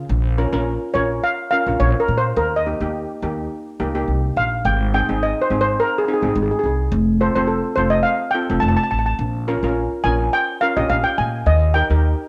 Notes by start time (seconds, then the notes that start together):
Already playing: F4
0.09 A#1
0.38 C#4 F4 A#4
0.52 A#1 C#4 F4 A#4
0.94 A#1 C#4 F4 A#4 C#5
1.24 F5
1.51 C#4 F4 A#4 F5
1.67 A#1 C#4 F4 A#4
1.80 A#1 C#5
2.00 A#4
2.08 A#2
2.18 C5
2.36 D#2 A#4
2.56 D#5
2.66 A#3 D#4 G4
2.80 D#2 A#3 D#4 G4
3.22 D#2 A#3 D#4 G4
3.80 C#2 A#3 D#4 G4
3.95 A#3 D#4 G4
4.08 C2
4.36 A#1 F5
4.65 G#1 G5
4.94 C4 D#4 G#4 G5
5.09 G#1 C4 D#4 G#4
5.23 D#5
5.42 C5
5.50 G#1 C4 D#4 G#4
5.61 C5
5.80 A#4
5.98 G#4
6.05 C4 D#4 G#4
6.14 G#4
6.22 G#1 C4 D#4 G#4
6.29 G#4
6.35 G#1 G#4
6.43 G#4
6.51 G#4
6.59 G#4
6.63 C2 G#4
6.92 F1
7.21 C4 F4 A4 C5
7.35 F1 C4 F4 A4 C5
7.47 A4
7.76 F1 C4 F4 A4 C5
7.90 D#5
8.03 F5
8.31 C4 F4 A4 G5
8.50 F1 C4 F4 A4
8.60 F1 A5
8.68 A5
8.77 A5
8.84 A5
8.91 A1 A5
8.99 A5
9.06 A5
9.19 A#1
9.48 C#4 F4 A#4
9.63 A#1 C#4 F4 A#4
10.04 A#1 C#4 F4 A#4 G#5
10.33 G5
10.61 C#4 F4 A#4 F5
10.77 A#1 C#4 F4 G4 D#5
10.90 A#1 F5
11.04 G5
11.18 A#2 G#5
11.46 D#2 D#5
11.74 D#4 G4 A#4 G5
11.90 D#2 D#4 G4 A#4